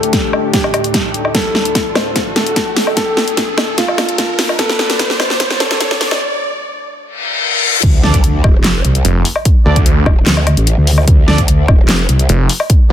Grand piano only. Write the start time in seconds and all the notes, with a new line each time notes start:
Already playing: A4
0.53 G4
1.35 A4
1.95 C5
2.36 A4
2.97 A4
3.78 F4
4.59 A4
5.20 C5
5.60 A4